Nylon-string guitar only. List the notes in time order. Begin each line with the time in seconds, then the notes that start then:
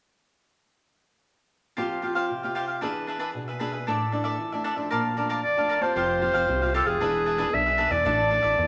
1.78 F3 C4 F4 G4
2.03 C4 F4 G4
2.30 C3
2.44 C4 F4 G4
2.82 E3 B3 D4 G#4
3.34 B2 B3 D4 G#4
3.60 B3 D4 G#4
3.87 A2 E3 A3 D4
4.12 E3 A3 D4
4.39 E3
4.53 E3 A3 D4
4.77 F3 A3 D4
4.91 A#2
5.17 F3 A3 D4
5.44 F2
5.57 F3 A3 D4
5.81 C4 F4 G4
5.96 F3
6.22 C4 F4 G4
6.48 C3 C4 F4 G4
6.62 C4 F4 G4
7.01 E3 B3 D4 G#4
7.38 B3 D4 G#4
7.53 B2 B3 D4 G#4
7.79 B3 D4 G#4
8.05 A2 E3 A3 D4
8.30 E3 A3 D4
8.58 E3